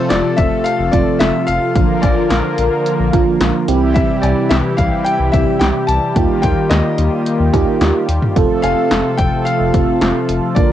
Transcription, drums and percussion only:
0.10 snare, closed hi-hat
0.38 kick, closed hi-hat
0.66 closed hi-hat
0.93 kick, closed hi-hat
1.20 snare, closed hi-hat
1.48 closed hi-hat
1.76 kick, closed hi-hat
2.03 kick, closed hi-hat, cowbell
2.31 snare, closed hi-hat
2.58 closed hi-hat
2.86 closed hi-hat
3.13 kick, closed hi-hat
3.41 snare, closed hi-hat
3.68 closed hi-hat
3.96 kick, closed hi-hat
4.23 closed hi-hat, cowbell
4.51 snare, closed hi-hat
4.78 kick, closed hi-hat
5.06 closed hi-hat
5.33 kick, closed hi-hat
5.61 snare, closed hi-hat
5.88 closed hi-hat
6.16 kick, closed hi-hat
6.43 kick, closed hi-hat
6.71 snare, closed hi-hat
6.98 closed hi-hat
7.26 closed hi-hat
7.53 kick, closed hi-hat, cowbell
7.81 snare, closed hi-hat
8.09 closed hi-hat
8.22 mid tom
8.36 kick, closed hi-hat
8.64 closed hi-hat, cowbell
8.91 snare, closed hi-hat
9.19 kick, closed hi-hat
9.47 closed hi-hat
9.74 kick, closed hi-hat
10.01 snare, closed hi-hat
10.29 closed hi-hat
10.56 kick, closed hi-hat

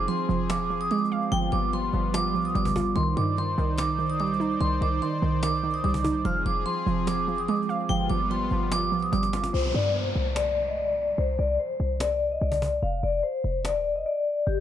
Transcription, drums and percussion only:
0.09 cajon slap
0.30 cajon slap
0.50 cajon slap
0.70 cajon slap
0.77 cajon slap
0.84 cajon slap
0.91 cajon slap
0.98 cajon slap
1.04 cajon slap
1.12 cajon slap
1.32 cajon slap
1.73 cajon slap
2.14 cajon slap
2.35 cajon slap
2.41 cajon slap
2.48 cajon slap
2.55 cajon slap
2.65 cajon bass
2.76 cajon bass
2.96 cajon slap
3.37 cajon slap
3.58 cajon slap
3.78 cajon slap
3.99 cajon slap
4.06 cajon slap
4.13 cajon slap
4.20 cajon slap
4.26 cajon slap
4.33 cajon slap
4.40 cajon slap
4.61 cajon slap
5.02 cajon slap
5.43 cajon slap
5.63 cajon slap
5.70 cajon slap
5.77 cajon slap
5.84 cajon slap
5.89 cajon slap
5.94 cajon bass
5.99 cajon slap
6.05 cajon bass
6.25 cajon slap
6.66 cajon slap
6.87 cajon slap
7.07 cajon slap
7.28 cajon slap
7.35 cajon slap
7.42 cajon slap
7.48 cajon slap
7.55 cajon slap
7.62 cajon slap
7.69 cajon slap
7.89 cajon slap
8.31 cajon slap
8.72 cajon slap
8.92 cajon slap
8.99 cajon slap
9.06 cajon slap
9.13 cajon slap
9.23 cajon slap
9.33 cajon slap
9.44 cajon slap
10.36 cajon slap
12.00 cajon slap
12.52 cajon bass
12.62 cajon bass
13.65 cajon slap

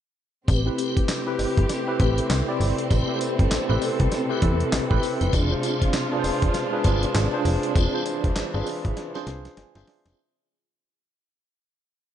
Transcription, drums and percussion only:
0.48 kick, closed hi-hat, tambourine, cowbell
0.78 closed hi-hat, tambourine
0.97 kick, closed hi-hat
1.09 snare, clap, closed hi-hat, tambourine, cowbell
1.39 open hi-hat, tambourine, cowbell
1.57 kick, closed hi-hat
1.69 snare, closed hi-hat, tambourine, cowbell
2.00 kick, closed hi-hat
2.18 closed hi-hat
2.30 snare, clap, closed hi-hat, tambourine, cowbell
2.61 open hi-hat, tambourine
2.78 closed hi-hat
2.91 kick, closed hi-hat, tambourine, cowbell
3.21 closed hi-hat, tambourine
3.39 kick, closed hi-hat
3.51 snare, clap, closed hi-hat, tambourine, cowbell
3.82 open hi-hat, tambourine, cowbell
4.00 kick, closed hi-hat
4.11 snare, closed hi-hat, tambourine, cowbell
4.42 kick, closed hi-hat
4.60 closed hi-hat
4.72 snare, clap, closed hi-hat, tambourine, cowbell
4.91 kick
5.03 open hi-hat, tambourine
5.21 closed hi-hat
5.33 kick, closed hi-hat, tambourine, cowbell
5.63 closed hi-hat, tambourine
5.82 kick, closed hi-hat
5.93 snare, clap, closed hi-hat, tambourine, cowbell
6.24 open hi-hat, tambourine, cowbell
6.42 kick, closed hi-hat
6.54 snare, closed hi-hat, tambourine, cowbell
6.84 kick, closed hi-hat
7.03 closed hi-hat
7.15 snare, clap, closed hi-hat, tambourine, cowbell
7.45 open hi-hat, tambourine
7.63 closed hi-hat
7.76 kick, closed hi-hat, tambourine, cowbell
8.06 closed hi-hat, tambourine
8.24 kick, closed hi-hat
8.36 snare, clap, closed hi-hat, tambourine, cowbell
8.66 open hi-hat, tambourine, cowbell
8.85 kick, closed hi-hat
8.97 snare, closed hi-hat, cowbell
9.15 snare
9.27 snare, closed hi-hat
9.45 snare, closed hi-hat
9.57 snare, closed hi-hat, cowbell
9.75 snare
9.87 snare, open hi-hat
10.05 snare, closed hi-hat

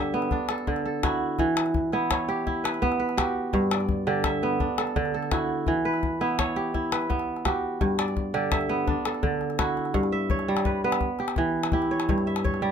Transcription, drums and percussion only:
0.22 calabash click
0.31 calabash thump
0.49 calabash click
0.58 calabash click
0.67 calabash thump
0.76 calabash click
1.03 calabash thump, calabash click
1.39 calabash thump
1.57 calabash click
1.66 calabash click
1.74 calabash thump
1.93 calabash click
2.11 calabash thump, calabash click
2.29 calabash click
2.47 calabash thump
2.65 calabash click
2.74 calabash click
2.83 calabash thump
2.92 calabash click
3.09 calabash click
3.18 calabash thump, calabash click
3.53 calabash thump
3.71 calabash click
3.80 calabash click
3.89 calabash thump
4.07 calabash click
4.24 calabash thump, calabash click
4.43 calabash click
4.60 calabash thump
4.78 calabash click
4.87 calabash click
4.96 calabash thump
5.05 calabash click
5.23 calabash click
5.32 calabash thump, calabash click
5.67 calabash thump
5.94 calabash click
6.03 calabash thump
6.21 calabash click
6.39 calabash thump, calabash click
6.56 calabash click
6.74 calabash thump
6.92 calabash click
7.02 calabash click
7.10 calabash thump
7.19 calabash click
7.36 calabash click
7.45 calabash thump, calabash click
7.81 calabash thump
7.99 calabash click
8.08 calabash click
8.17 calabash thump
8.35 calabash click
8.52 calabash thump, calabash click
8.61 calabash click
8.70 calabash click
8.88 calabash thump, calabash click
9.05 calabash click
9.15 calabash click
9.23 calabash thump
9.41 calabash click
9.50 calabash click
9.59 calabash thump, calabash click
9.77 calabash click
9.85 calabash click
9.94 calabash thump
10.03 calabash click
10.30 calabash thump
10.39 calabash click
10.57 calabash click
10.65 calabash thump
10.92 calabash click
11.01 calabash thump
11.19 calabash click
11.28 calabash click
11.36 calabash thump
11.63 calabash click
11.72 calabash thump
11.82 calabash click
12.00 calabash click
12.09 calabash thump
12.18 calabash click
12.36 calabash click
12.45 calabash thump
12.54 calabash click

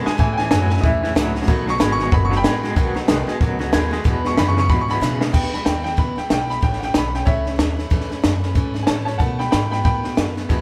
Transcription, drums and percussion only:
0.06 snare
0.19 kick, snare
0.38 snare
0.51 snare, hi-hat pedal
0.70 snare
0.77 snare
0.84 kick, snare
1.04 snare
1.16 snare, hi-hat pedal
1.35 snare
1.42 snare
1.48 kick, snare
1.68 snare
1.80 snare, hi-hat pedal
1.99 snare
2.12 kick, snare
2.32 snare
2.44 snare, hi-hat pedal
2.64 snare
2.76 kick, snare
2.95 snare
3.08 snare, hi-hat pedal
3.28 snare
3.41 kick, snare
3.60 snare
3.73 snare, hi-hat pedal
3.92 snare
4.05 kick, snare
4.25 snare
4.38 snare, hi-hat pedal
4.57 snare
4.70 kick, snare
4.89 snare
5.02 snare, hi-hat pedal
5.21 snare
5.34 kick, snare, crash
5.44 snare
5.53 snare
5.66 snare, hi-hat pedal
5.85 snare
5.98 kick, snare
6.17 snare
6.30 snare, hi-hat pedal
6.50 snare
6.63 kick, snare
6.73 snare
6.82 snare
6.94 snare, hi-hat pedal
7.14 snare
7.27 kick, snare
7.46 snare
7.59 snare, hi-hat pedal
7.78 snare
7.91 kick, snare
8.01 snare
8.11 snare
8.24 snare, hi-hat pedal
8.43 snare
8.55 kick, snare
8.75 snare
8.87 snare, hi-hat pedal
9.07 snare
9.19 kick, snare
9.40 snare
9.52 snare, hi-hat pedal
9.72 snare
9.85 kick, snare
10.04 snare
10.17 snare, hi-hat pedal
10.37 snare
10.50 kick, snare

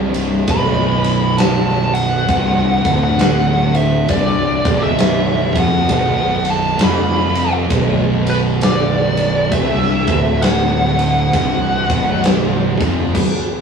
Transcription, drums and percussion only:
0.14 ride
0.48 kick, ride
1.04 ride
1.38 snare, ride
1.95 ride
2.28 kick, ride
2.85 kick, ride
3.19 snare, ride
3.75 ride
4.09 kick, ride
4.65 kick, ride
4.99 snare, ride
5.55 kick, ride
5.89 kick, ride
6.45 ride
6.79 snare, ride
7.35 ride
7.70 kick, ride
8.27 ride
8.61 snare, ride
9.17 ride
9.52 kick, ride
9.82 snare
10.07 kick, ride
10.42 snare, ride
10.99 ride
11.33 kick, ride
11.90 kick, ride
12.24 snare, ride
12.80 kick, ride
13.15 kick, crash

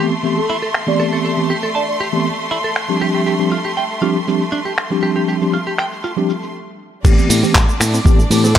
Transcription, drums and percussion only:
0.13 shaker
0.25 shaker
0.38 shaker
0.50 shaker
0.63 shaker
0.74 finger snap, shaker
0.88 shaker
1.00 shaker
1.25 shaker
1.38 shaker
1.50 shaker
1.64 shaker
1.75 shaker
1.89 shaker
2.01 shaker
2.14 shaker
2.26 shaker
2.39 shaker
2.51 shaker
2.64 shaker
2.76 finger snap, shaker
2.89 shaker
3.01 shaker
3.15 shaker
3.27 shaker
3.40 shaker
3.52 shaker
3.65 shaker
3.77 shaker
3.90 shaker
4.03 shaker
4.16 shaker
4.28 shaker
4.41 shaker
4.53 shaker
4.66 shaker
4.78 finger snap, shaker
4.91 shaker
5.03 shaker
5.16 shaker
5.28 shaker
5.41 shaker
5.54 shaker
5.67 shaker
5.78 finger snap, shaker
5.92 shaker
6.04 shaker
6.17 shaker
6.29 shaker
6.42 shaker
7.05 kick, crash, shaker
7.18 shaker
7.30 open hi-hat, shaker
7.44 shaker
7.55 kick, clap, shaker
7.69 shaker
7.81 finger snap, open hi-hat, shaker
7.94 shaker
8.06 kick, shaker
8.19 shaker
8.31 open hi-hat, shaker
8.44 shaker
8.56 clap

